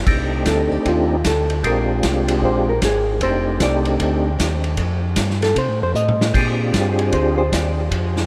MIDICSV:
0, 0, Header, 1, 5, 480
1, 0, Start_track
1, 0, Tempo, 391645
1, 96, Time_signature, 4, 2, 24, 8
1, 10125, End_track
2, 0, Start_track
2, 0, Title_t, "Hollow-body jazz guitar"
2, 0, Program_c, 0, 26
2, 586, Note_on_c, 0, 69, 67
2, 880, Note_off_c, 0, 69, 0
2, 880, Note_on_c, 0, 67, 75
2, 1049, Note_off_c, 0, 67, 0
2, 1082, Note_on_c, 0, 65, 65
2, 1515, Note_off_c, 0, 65, 0
2, 1557, Note_on_c, 0, 69, 72
2, 1992, Note_off_c, 0, 69, 0
2, 2044, Note_on_c, 0, 70, 75
2, 2327, Note_off_c, 0, 70, 0
2, 3000, Note_on_c, 0, 72, 88
2, 3285, Note_off_c, 0, 72, 0
2, 3301, Note_on_c, 0, 70, 83
2, 3460, Note_off_c, 0, 70, 0
2, 3489, Note_on_c, 0, 68, 72
2, 3919, Note_off_c, 0, 68, 0
2, 3961, Note_on_c, 0, 72, 77
2, 4395, Note_off_c, 0, 72, 0
2, 4448, Note_on_c, 0, 74, 86
2, 4622, Note_off_c, 0, 74, 0
2, 6654, Note_on_c, 0, 69, 83
2, 6817, Note_off_c, 0, 69, 0
2, 6843, Note_on_c, 0, 72, 79
2, 7127, Note_off_c, 0, 72, 0
2, 7147, Note_on_c, 0, 72, 83
2, 7296, Note_off_c, 0, 72, 0
2, 7301, Note_on_c, 0, 75, 94
2, 7746, Note_off_c, 0, 75, 0
2, 8575, Note_on_c, 0, 68, 53
2, 8738, Note_off_c, 0, 68, 0
2, 8749, Note_on_c, 0, 72, 75
2, 9029, Note_off_c, 0, 72, 0
2, 9043, Note_on_c, 0, 72, 82
2, 9236, Note_off_c, 0, 72, 0
2, 9236, Note_on_c, 0, 74, 98
2, 9706, Note_off_c, 0, 74, 0
2, 10125, End_track
3, 0, Start_track
3, 0, Title_t, "Tonewheel organ"
3, 0, Program_c, 1, 16
3, 78, Note_on_c, 1, 57, 54
3, 92, Note_on_c, 1, 62, 51
3, 94, Note_on_c, 1, 60, 50
3, 97, Note_on_c, 1, 67, 56
3, 101, Note_on_c, 1, 63, 47
3, 1422, Note_off_c, 1, 57, 0
3, 1429, Note_off_c, 1, 60, 0
3, 1429, Note_off_c, 1, 62, 0
3, 1431, Note_off_c, 1, 67, 0
3, 1433, Note_off_c, 1, 63, 0
3, 2004, Note_on_c, 1, 60, 56
3, 2010, Note_on_c, 1, 56, 56
3, 2014, Note_on_c, 1, 62, 53
3, 2023, Note_on_c, 1, 65, 52
3, 2024, Note_on_c, 1, 67, 65
3, 3345, Note_off_c, 1, 60, 0
3, 3348, Note_off_c, 1, 56, 0
3, 3350, Note_off_c, 1, 62, 0
3, 3355, Note_off_c, 1, 65, 0
3, 3355, Note_off_c, 1, 67, 0
3, 3947, Note_on_c, 1, 57, 53
3, 3953, Note_on_c, 1, 60, 47
3, 3959, Note_on_c, 1, 62, 49
3, 3969, Note_on_c, 1, 63, 47
3, 3972, Note_on_c, 1, 67, 53
3, 5277, Note_off_c, 1, 57, 0
3, 5280, Note_off_c, 1, 60, 0
3, 5283, Note_off_c, 1, 62, 0
3, 5288, Note_off_c, 1, 63, 0
3, 5290, Note_off_c, 1, 67, 0
3, 7768, Note_on_c, 1, 68, 60
3, 7769, Note_on_c, 1, 60, 53
3, 7773, Note_on_c, 1, 62, 53
3, 7782, Note_on_c, 1, 65, 53
3, 7783, Note_on_c, 1, 67, 65
3, 9109, Note_off_c, 1, 60, 0
3, 9109, Note_off_c, 1, 68, 0
3, 9111, Note_off_c, 1, 62, 0
3, 9115, Note_off_c, 1, 65, 0
3, 9116, Note_off_c, 1, 67, 0
3, 10125, End_track
4, 0, Start_track
4, 0, Title_t, "Tonewheel organ"
4, 0, Program_c, 2, 16
4, 80, Note_on_c, 2, 36, 69
4, 553, Note_off_c, 2, 36, 0
4, 558, Note_on_c, 2, 38, 75
4, 850, Note_off_c, 2, 38, 0
4, 876, Note_on_c, 2, 38, 34
4, 964, Note_off_c, 2, 38, 0
4, 1048, Note_on_c, 2, 39, 68
4, 1516, Note_off_c, 2, 39, 0
4, 1529, Note_on_c, 2, 38, 77
4, 1997, Note_off_c, 2, 38, 0
4, 2010, Note_on_c, 2, 34, 75
4, 2478, Note_off_c, 2, 34, 0
4, 2493, Note_on_c, 2, 36, 80
4, 2959, Note_off_c, 2, 36, 0
4, 2966, Note_on_c, 2, 34, 75
4, 3436, Note_off_c, 2, 34, 0
4, 3457, Note_on_c, 2, 32, 81
4, 3921, Note_off_c, 2, 32, 0
4, 3928, Note_on_c, 2, 29, 76
4, 4397, Note_off_c, 2, 29, 0
4, 4414, Note_on_c, 2, 36, 78
4, 4880, Note_off_c, 2, 36, 0
4, 4901, Note_on_c, 2, 38, 74
4, 5364, Note_off_c, 2, 38, 0
4, 5377, Note_on_c, 2, 39, 82
4, 5842, Note_off_c, 2, 39, 0
4, 5855, Note_on_c, 2, 41, 81
4, 6321, Note_off_c, 2, 41, 0
4, 6332, Note_on_c, 2, 43, 80
4, 6800, Note_off_c, 2, 43, 0
4, 6810, Note_on_c, 2, 48, 72
4, 6969, Note_off_c, 2, 48, 0
4, 6969, Note_on_c, 2, 45, 47
4, 7133, Note_off_c, 2, 45, 0
4, 7134, Note_on_c, 2, 41, 53
4, 7284, Note_off_c, 2, 41, 0
4, 7286, Note_on_c, 2, 45, 79
4, 7757, Note_off_c, 2, 45, 0
4, 7770, Note_on_c, 2, 46, 75
4, 8239, Note_off_c, 2, 46, 0
4, 8254, Note_on_c, 2, 43, 78
4, 8721, Note_off_c, 2, 43, 0
4, 8739, Note_on_c, 2, 38, 78
4, 9204, Note_off_c, 2, 38, 0
4, 9218, Note_on_c, 2, 39, 83
4, 9683, Note_off_c, 2, 39, 0
4, 9694, Note_on_c, 2, 41, 73
4, 10125, Note_off_c, 2, 41, 0
4, 10125, End_track
5, 0, Start_track
5, 0, Title_t, "Drums"
5, 80, Note_on_c, 9, 49, 65
5, 82, Note_on_c, 9, 36, 62
5, 202, Note_off_c, 9, 49, 0
5, 205, Note_off_c, 9, 36, 0
5, 559, Note_on_c, 9, 44, 49
5, 559, Note_on_c, 9, 51, 57
5, 561, Note_on_c, 9, 38, 59
5, 564, Note_on_c, 9, 36, 18
5, 681, Note_off_c, 9, 44, 0
5, 681, Note_off_c, 9, 51, 0
5, 684, Note_off_c, 9, 38, 0
5, 687, Note_off_c, 9, 36, 0
5, 1046, Note_on_c, 9, 36, 19
5, 1048, Note_on_c, 9, 51, 51
5, 1169, Note_off_c, 9, 36, 0
5, 1171, Note_off_c, 9, 51, 0
5, 1526, Note_on_c, 9, 44, 48
5, 1526, Note_on_c, 9, 51, 65
5, 1528, Note_on_c, 9, 38, 64
5, 1529, Note_on_c, 9, 36, 19
5, 1648, Note_off_c, 9, 44, 0
5, 1648, Note_off_c, 9, 51, 0
5, 1651, Note_off_c, 9, 38, 0
5, 1652, Note_off_c, 9, 36, 0
5, 1835, Note_on_c, 9, 51, 40
5, 1958, Note_off_c, 9, 51, 0
5, 2011, Note_on_c, 9, 51, 55
5, 2012, Note_on_c, 9, 36, 19
5, 2134, Note_off_c, 9, 51, 0
5, 2135, Note_off_c, 9, 36, 0
5, 2488, Note_on_c, 9, 44, 51
5, 2488, Note_on_c, 9, 51, 63
5, 2491, Note_on_c, 9, 38, 62
5, 2493, Note_on_c, 9, 36, 22
5, 2611, Note_off_c, 9, 44, 0
5, 2611, Note_off_c, 9, 51, 0
5, 2613, Note_off_c, 9, 38, 0
5, 2615, Note_off_c, 9, 36, 0
5, 2799, Note_on_c, 9, 51, 60
5, 2922, Note_off_c, 9, 51, 0
5, 2973, Note_on_c, 9, 36, 21
5, 3095, Note_off_c, 9, 36, 0
5, 3453, Note_on_c, 9, 44, 54
5, 3453, Note_on_c, 9, 51, 65
5, 3456, Note_on_c, 9, 36, 20
5, 3456, Note_on_c, 9, 38, 64
5, 3576, Note_off_c, 9, 44, 0
5, 3576, Note_off_c, 9, 51, 0
5, 3579, Note_off_c, 9, 36, 0
5, 3579, Note_off_c, 9, 38, 0
5, 3931, Note_on_c, 9, 51, 59
5, 3935, Note_on_c, 9, 36, 22
5, 4054, Note_off_c, 9, 51, 0
5, 4058, Note_off_c, 9, 36, 0
5, 4414, Note_on_c, 9, 44, 54
5, 4414, Note_on_c, 9, 51, 60
5, 4416, Note_on_c, 9, 36, 21
5, 4417, Note_on_c, 9, 38, 61
5, 4537, Note_off_c, 9, 44, 0
5, 4537, Note_off_c, 9, 51, 0
5, 4539, Note_off_c, 9, 36, 0
5, 4539, Note_off_c, 9, 38, 0
5, 4722, Note_on_c, 9, 51, 42
5, 4845, Note_off_c, 9, 51, 0
5, 4897, Note_on_c, 9, 36, 19
5, 4899, Note_on_c, 9, 51, 57
5, 5020, Note_off_c, 9, 36, 0
5, 5022, Note_off_c, 9, 51, 0
5, 5378, Note_on_c, 9, 36, 22
5, 5388, Note_on_c, 9, 44, 60
5, 5388, Note_on_c, 9, 51, 68
5, 5390, Note_on_c, 9, 38, 64
5, 5501, Note_off_c, 9, 36, 0
5, 5511, Note_off_c, 9, 44, 0
5, 5511, Note_off_c, 9, 51, 0
5, 5513, Note_off_c, 9, 38, 0
5, 5685, Note_on_c, 9, 51, 39
5, 5807, Note_off_c, 9, 51, 0
5, 5848, Note_on_c, 9, 51, 57
5, 5852, Note_on_c, 9, 36, 25
5, 5971, Note_off_c, 9, 51, 0
5, 5974, Note_off_c, 9, 36, 0
5, 6325, Note_on_c, 9, 44, 59
5, 6325, Note_on_c, 9, 51, 64
5, 6327, Note_on_c, 9, 38, 58
5, 6332, Note_on_c, 9, 36, 21
5, 6447, Note_off_c, 9, 44, 0
5, 6447, Note_off_c, 9, 51, 0
5, 6450, Note_off_c, 9, 38, 0
5, 6455, Note_off_c, 9, 36, 0
5, 6501, Note_on_c, 9, 38, 27
5, 6624, Note_off_c, 9, 38, 0
5, 6646, Note_on_c, 9, 51, 45
5, 6655, Note_on_c, 9, 38, 38
5, 6768, Note_off_c, 9, 51, 0
5, 6778, Note_off_c, 9, 38, 0
5, 6816, Note_on_c, 9, 36, 19
5, 6816, Note_on_c, 9, 51, 57
5, 6938, Note_off_c, 9, 36, 0
5, 6938, Note_off_c, 9, 51, 0
5, 7293, Note_on_c, 9, 44, 50
5, 7416, Note_off_c, 9, 44, 0
5, 7458, Note_on_c, 9, 47, 55
5, 7581, Note_off_c, 9, 47, 0
5, 7615, Note_on_c, 9, 38, 72
5, 7737, Note_off_c, 9, 38, 0
5, 7776, Note_on_c, 9, 36, 67
5, 7780, Note_on_c, 9, 49, 67
5, 7898, Note_off_c, 9, 36, 0
5, 7903, Note_off_c, 9, 49, 0
5, 8257, Note_on_c, 9, 36, 18
5, 8257, Note_on_c, 9, 44, 53
5, 8257, Note_on_c, 9, 51, 63
5, 8260, Note_on_c, 9, 38, 66
5, 8380, Note_off_c, 9, 36, 0
5, 8380, Note_off_c, 9, 44, 0
5, 8380, Note_off_c, 9, 51, 0
5, 8382, Note_off_c, 9, 38, 0
5, 8563, Note_on_c, 9, 51, 43
5, 8686, Note_off_c, 9, 51, 0
5, 8732, Note_on_c, 9, 51, 52
5, 8736, Note_on_c, 9, 36, 25
5, 8855, Note_off_c, 9, 51, 0
5, 8858, Note_off_c, 9, 36, 0
5, 9220, Note_on_c, 9, 36, 24
5, 9225, Note_on_c, 9, 44, 61
5, 9225, Note_on_c, 9, 51, 61
5, 9227, Note_on_c, 9, 38, 66
5, 9343, Note_off_c, 9, 36, 0
5, 9347, Note_off_c, 9, 44, 0
5, 9347, Note_off_c, 9, 51, 0
5, 9350, Note_off_c, 9, 38, 0
5, 9699, Note_on_c, 9, 36, 23
5, 9702, Note_on_c, 9, 51, 59
5, 9821, Note_off_c, 9, 36, 0
5, 9824, Note_off_c, 9, 51, 0
5, 10008, Note_on_c, 9, 38, 47
5, 10125, Note_off_c, 9, 38, 0
5, 10125, End_track
0, 0, End_of_file